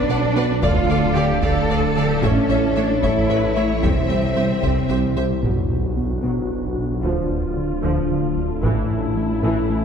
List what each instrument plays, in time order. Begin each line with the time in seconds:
Already playing: double bass section B1, detuned saw bass B1, cello section D4, ambient pad D4 D5, french horn section B4 D5
0.09 analog synth bass B2, violin section A4 D5 F#5, synth pluck B4, viola section B4 D5
0.36 analog synth bass B3, synth pluck F#4, viola section B4 D5, violin section B4 D5 F#5
0.62 detuned saw bass D1, analog synth bass D2, double bass section D2, synth pluck D3, cello section F4, violin section A4 D5 F5, ambient pad A4, viola section A4 D5, french horn section D5 F5, taiko
0.89 analog synth bass D3, synth pluck A3, viola section A4 D5, violin section D5 F5
1.16 analog synth bass D3, synth pluck A3, cello section G4, viola section A4 D5, violin section D5 F5
1.42 analog synth bass D2, double bass section D2, synth pluck D3, violin section G4 D5 F5, cello section A4, viola section A4 D5, taiko
1.69 analog synth bass D2, synth pluck D4, violin section F4 D5 F5, viola section A4 D5
1.96 analog synth bass D3, synth pluck A3, violin section G4 D5 F5, viola section A4 D5
2.23 double bass section A1, detuned saw bass A1, analog synth bass A2, ambient pad E3 E4, synth pluck A3, cello section C#4, viola section A4 C#5, violin section A4 E5, french horn section C#5 E5, taiko
2.50 analog synth bass A3, synth pluck E4, viola section A4 C#5, violin section E5
2.76 analog synth bass A3, cello section D4, synth pluck E4, viola section A4 C#5, violin section E5
3.03 double bass section A1, analog synth bass A2, synth pluck A3, cello section E4, viola section A4 C#5, violin section A4 E5, taiko
3.30 analog synth bass A2, synth pluck A4, viola section A4 C#5, violin section B4 E5
3.56 analog synth bass A3, synth pluck E4, viola section A4 C#5, violin section C#5 E5
3.83 detuned saw bass C2, double bass section C2, analog synth bass C2, synth pluck C3, cello section C4, viola section G4 C5, french horn section C5, violin section E5, taiko
4.09 analog synth bass C3, synth pluck G3, viola section G4 C5, violin section E5
4.36 analog synth bass C3, synth pluck G3, viola section G4 C5, violin section E5
4.62 double bass section C2, analog synth bass C2, synth pluck C3, viola section G4 C5, violin section E5, taiko
4.89 analog synth bass C2, synth pluck C4, viola section G4 C5, violin section E5
5.16 analog synth bass C3, synth pluck G3, viola section G4 C5, violin section E5
5.43 detuned saw bass B1, double bass section B1, cello section B2, analog synth bass B2, viola section F#3 F#4, synth pluck B3, ambient pad D4, french horn section D4 F#4, taiko, sub drop
5.70 analog synth bass B2
5.97 analog synth bass B3
6.23 double bass section B1, cello section B2, analog synth bass B2, viola section F#3, synth pluck B3
6.50 analog synth bass B3
6.63 taiko
6.77 analog synth bass B2
7.03 detuned saw bass D1, double bass section D2, analog synth bass D2, synth pluck D3, cello section D3, viola section F3 F4, ambient pad A3 A4, french horn section F4
7.30 analog synth bass D2
7.57 analog synth bass D3
7.83 analog synth bass D2, double bass section D2, cello section D3, synth pluck D3, viola section F3
8.10 analog synth bass D3
8.37 analog synth bass D2
8.63 detuned saw bass A1, double bass section A1, cello section A2, analog synth bass A2, viola section E3 E4, synth pluck A3, french horn section C#4 E4, ambient pad E4, taiko
8.91 analog synth bass A2
9.17 analog synth bass A3
9.43 double bass section A1, cello section A2, analog synth bass A2, viola section E3, synth pluck A3
9.70 analog synth bass A3